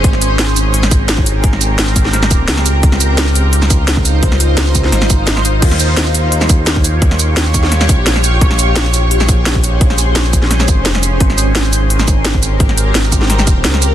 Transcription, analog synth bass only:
\new Staff \with { instrumentName = "Analog synth bass" } { \clef bass \time 4/4 \key aes \major \tempo 4 = 172 aes,,1~ | aes,,4 aes,,4. ees,,16 ees,,16 des,4 | des,1~ | des,4 des,4 aes,,8 aes,,4. |
ees,1~ | ees,4 ees,4. des,16 bes,,16 bes,,4 | bes,,1~ | bes,,4 bes,,4. aes,,16 f,,16 f,,4 |
aes,,1~ | aes,,4 aes,,4. ees,,16 ees,,16 des,4 | }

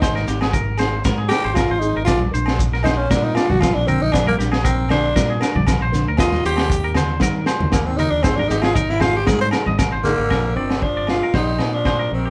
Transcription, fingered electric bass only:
\new Staff \with { instrumentName = "Fingered electric bass" } { \clef bass \time 4/4 \key bes \mixolydian \tempo 4 = 117 aes,,8 aes,,4. aes,8 r16 aes,,8 aes,,8 aes,,16 | bes,,8 bes,,4. bes,8 r16 bes,,8 bes,,8 bes,,16 | bes,,8 bes,,4. bes,8 r16 bes,,8 bes,,8 d,16 | ees,8 ees,4. ees8 r16 ees,8 ees,8 ees,16 |
aes,,8 aes,,4. aes,8 r16 aes,,8 aes,,8 aes,,16 | bes,,8 g,,8 r16 g,,8 r16 bes,,8 bes,4 bes,,8 | }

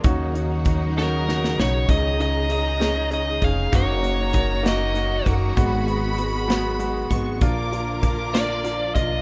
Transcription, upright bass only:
\new Staff \with { instrumentName = "Upright bass" } { \clef bass \time 6/8 \key ees \minor \tempo 4. = 65 ees,2~ ees,8 ces,8 | des,2~ des,8 f,,8 | ges,,2~ ges,,8 ges,,8 | aes,,2~ aes,,8 aes,,8 |
bes,,2~ bes,,8 ces,8 | }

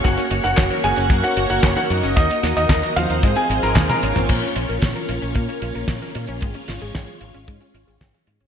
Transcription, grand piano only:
\new Staff \with { instrumentName = "Grand piano" } { \time 4/4 \key bes \minor \tempo 4 = 113 <ges' ges''>8 r16 <ges' ges''>8 r16 <aes' aes''>8 r16 <ges' ges''>16 r16 <ges' ges''>16 r16 <ges' ges''>8 r16 | <ees' ees''>8 r16 <ees' ees''>8 r16 <f' f''>8 r16 <aes' aes''>16 r16 <bes' bes''>16 r16 <bes' bes''>8 r16 | r1 | r1 | }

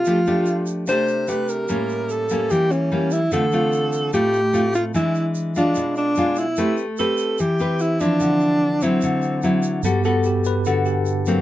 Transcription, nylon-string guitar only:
\new Staff \with { instrumentName = "Nylon-string guitar" } { \time 4/4 \key d \dorian \tempo 4 = 147 << { <a d' g'>8 <a d' g'>4. <a d' g'>4 <a d' g'>4 | <g bes cis'>4. <g bes cis'>4. <g bes cis'>8 r8 | <a c' f'>8 <a c' f'>4. <a c' f'>8 r8 <a c' f'>4 | <gis d'>4. <gis d' f'>4. <gis d' f'>8 r8 |
<c' g' b'>8 r8 <c' g' b'>4 r8 <c' g' b'>4 <f c' e'>8~ | <f c' e'>4. <fis c' e'>4. <fis c' e'>4 | \key g \major <b fis' a'>8 <b fis' a'>4. <b fis' a'>4. <fis bes c'>8 | } \\ { f2 c2 | a,2 e2 | d2 a,2 | e2 b,2 |
a2 e2 | d2 d2 | g2 d2 | } >> }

